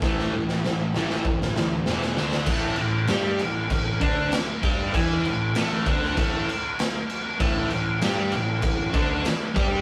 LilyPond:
<<
  \new Staff \with { instrumentName = "Distorted electric guitar" } { \clef bass \time 4/4 \key d \dorian \tempo 4 = 98 <a, e a>8 <a, e>8 <a, e>8 <a, e a>8 <a, e>8 <a, e>8 <e, b, e>8 <d a d'>8 | <a, a>8 a,8 <g g'>8 a,8 a,8 <d d'>8 r8 <g g'>8 | <e e'>8 a,8 <a, a>8 <d d'>8 <a, a>8 r4. | <a, a>8 a,8 <g g'>8 a,8 a,8 <d d'>8 r8 <g g'>8 | }
  \new Staff \with { instrumentName = "Picked electric bass" } { \clef bass \time 4/4 \key d \dorian a,,8 a,,8 a,,8 a,,8 g,,8 d,8 e,,8 d,8 | a,,8 a,,8 g,8 a,,8 a,,8 d,8 r8 g,8 | e,8 a,,8 a,,8 d,8 a,,8 r4. | a,,8 a,,8 g,8 a,,8 a,,8 d,8 r8 g,8 | }
  \new DrumStaff \with { instrumentName = "Drums" } \drummode { \time 4/4 <bd sn>16 sn8 sn16 sn8 sn16 sn16 bd16 sn16 sn8 sn16 sn16 sn16 sn16 | <cymc bd>8 cymc8 <cymc sn>8 cymc8 <cymc bd>8 <cymc bd>8 <cymc sn>8 <cymc bd>8 | <cymc bd>8 cymc8 <cymc sn>8 <cymc bd>16 sn16 <cymc bd>8 cymc8 <cymc sn>8 cymc8 | <cymc bd>8 cymc8 <cymc sn>8 cymc8 <cymc bd>8 <cymc bd>8 <cymc sn>8 <cymc bd>8 | }
>>